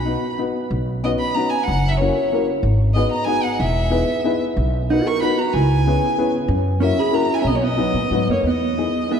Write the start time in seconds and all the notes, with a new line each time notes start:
Already playing: B1 F#4 B5
0.05 B3 D#4 F#4 B4
0.39 B3 D#4 F#4 B4
0.71 B1
1.04 B3 C#4 D#4 F#4 B4 D#5
1.18 B5
1.34 B3 C#4 D#4 F#4 B4 A#5
1.50 G#5
1.63 F#5
1.68 F#1
1.89 E5
1.97 A#3 C#4 C#5
2.01 E4 F#4 A#4
2.32 A#3 C#4 E4 F#4 A#4
2.63 G#1
2.94 B3 D#4 F#4 G#4 B4 D#5
3.11 A#5
3.24 B3 D#4 F#4 G#4 B4 G#5
3.43 F#5
3.60 E1 E5
3.90 B3 D#4 E4 G#4 B4
4.24 B3 D#4 E4 G#4 B4
4.57 B1
4.90 B3 D#4 F#4 A#4 B4 F#5
5.07 A#4 C#6
5.21 B3 D#4 F#4 A#4 B4 B5
5.38 F#4 A#5
5.53 C#2 E4 G#5
5.87 B3 C#4 E4 G#4 B4
6.18 B3 C#4 E4 G#4 B4
6.48 F#2
6.80 A#3 C#4 E4 F#4 A#4 E5
6.99 G#4 B5
7.12 A#3 C#4 E4 F#4 A#4 A#5
7.33 E4 G#5
7.40 C#4 E5
7.45 B1 D#5
7.49 A#3 B3
7.55 C#5
7.61 B3 D#5
7.77 F#3 B3 D#4 F#4 B4
7.94 A#2
8.11 G#2 F#3 B3 D#4 F#4 B4
8.28 F#2 A#3 C#5
8.44 E2 B3 D#5
8.77 B3 D#4 E4 G#4
9.09 B3 D#4 E4 G#4 E5